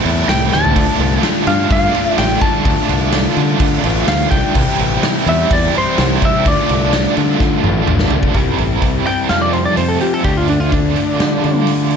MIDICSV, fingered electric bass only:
0, 0, Header, 1, 2, 480
1, 0, Start_track
1, 0, Key_signature, -1, "minor"
1, 0, Tempo, 474684
1, 769, Time_signature, 4, 2, 24, 8
1, 12099, End_track
2, 0, Start_track
2, 0, Title_t, "Fingered electric bass"
2, 0, Program_c, 0, 33
2, 52, Note_on_c, 0, 40, 103
2, 231, Note_off_c, 0, 40, 0
2, 287, Note_on_c, 0, 36, 88
2, 504, Note_off_c, 0, 36, 0
2, 532, Note_on_c, 0, 38, 81
2, 746, Note_off_c, 0, 38, 0
2, 770, Note_on_c, 0, 38, 95
2, 860, Note_off_c, 0, 38, 0
2, 1004, Note_on_c, 0, 36, 99
2, 1187, Note_off_c, 0, 36, 0
2, 1485, Note_on_c, 0, 43, 94
2, 1667, Note_off_c, 0, 43, 0
2, 1726, Note_on_c, 0, 43, 100
2, 1908, Note_off_c, 0, 43, 0
2, 2205, Note_on_c, 0, 33, 93
2, 2387, Note_off_c, 0, 33, 0
2, 2684, Note_on_c, 0, 38, 112
2, 2775, Note_off_c, 0, 38, 0
2, 2925, Note_on_c, 0, 36, 92
2, 3288, Note_off_c, 0, 36, 0
2, 3404, Note_on_c, 0, 50, 94
2, 3586, Note_off_c, 0, 50, 0
2, 3639, Note_on_c, 0, 50, 94
2, 3823, Note_off_c, 0, 50, 0
2, 3882, Note_on_c, 0, 33, 106
2, 4064, Note_off_c, 0, 33, 0
2, 4115, Note_on_c, 0, 38, 90
2, 4300, Note_off_c, 0, 38, 0
2, 4365, Note_on_c, 0, 36, 92
2, 4455, Note_off_c, 0, 36, 0
2, 4609, Note_on_c, 0, 36, 98
2, 4698, Note_off_c, 0, 36, 0
2, 4844, Note_on_c, 0, 33, 101
2, 5025, Note_off_c, 0, 33, 0
2, 5323, Note_on_c, 0, 40, 100
2, 5504, Note_off_c, 0, 40, 0
2, 5571, Note_on_c, 0, 40, 104
2, 5749, Note_off_c, 0, 40, 0
2, 6049, Note_on_c, 0, 36, 94
2, 6227, Note_off_c, 0, 36, 0
2, 6532, Note_on_c, 0, 38, 106
2, 6618, Note_off_c, 0, 38, 0
2, 6771, Note_on_c, 0, 36, 88
2, 7129, Note_off_c, 0, 36, 0
2, 7253, Note_on_c, 0, 50, 87
2, 7429, Note_off_c, 0, 50, 0
2, 7488, Note_on_c, 0, 50, 92
2, 7666, Note_off_c, 0, 50, 0
2, 7734, Note_on_c, 0, 33, 107
2, 7910, Note_off_c, 0, 33, 0
2, 7970, Note_on_c, 0, 33, 89
2, 8182, Note_off_c, 0, 33, 0
2, 8209, Note_on_c, 0, 36, 82
2, 8421, Note_off_c, 0, 36, 0
2, 8444, Note_on_c, 0, 36, 83
2, 8624, Note_off_c, 0, 36, 0
2, 8680, Note_on_c, 0, 33, 89
2, 8862, Note_off_c, 0, 33, 0
2, 8924, Note_on_c, 0, 36, 95
2, 9105, Note_off_c, 0, 36, 0
2, 9406, Note_on_c, 0, 41, 96
2, 9768, Note_off_c, 0, 41, 0
2, 9882, Note_on_c, 0, 41, 90
2, 10065, Note_off_c, 0, 41, 0
2, 10360, Note_on_c, 0, 38, 98
2, 11089, Note_off_c, 0, 38, 0
2, 11327, Note_on_c, 0, 50, 91
2, 11509, Note_off_c, 0, 50, 0
2, 11571, Note_on_c, 0, 50, 101
2, 12099, Note_off_c, 0, 50, 0
2, 12099, End_track
0, 0, End_of_file